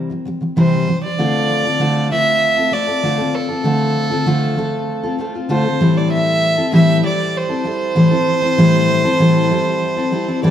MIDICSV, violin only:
0, 0, Header, 1, 2, 480
1, 0, Start_track
1, 0, Key_signature, -1, "minor"
1, 0, Tempo, 615385
1, 928, Time_signature, 4, 2, 24, 8
1, 8194, End_track
2, 0, Start_track
2, 0, Title_t, "Violin"
2, 0, Program_c, 0, 40
2, 453, Note_on_c, 0, 72, 75
2, 786, Note_off_c, 0, 72, 0
2, 811, Note_on_c, 0, 74, 88
2, 1619, Note_off_c, 0, 74, 0
2, 1650, Note_on_c, 0, 76, 96
2, 2132, Note_on_c, 0, 74, 88
2, 2143, Note_off_c, 0, 76, 0
2, 2611, Note_on_c, 0, 69, 84
2, 2622, Note_off_c, 0, 74, 0
2, 4050, Note_off_c, 0, 69, 0
2, 4298, Note_on_c, 0, 72, 83
2, 4657, Note_on_c, 0, 74, 82
2, 4668, Note_off_c, 0, 72, 0
2, 4771, Note_off_c, 0, 74, 0
2, 4776, Note_on_c, 0, 76, 100
2, 5222, Note_off_c, 0, 76, 0
2, 5262, Note_on_c, 0, 76, 93
2, 5480, Note_off_c, 0, 76, 0
2, 5506, Note_on_c, 0, 74, 84
2, 5748, Note_on_c, 0, 72, 92
2, 5759, Note_off_c, 0, 74, 0
2, 8140, Note_off_c, 0, 72, 0
2, 8145, Note_on_c, 0, 74, 92
2, 8194, Note_off_c, 0, 74, 0
2, 8194, End_track
0, 0, End_of_file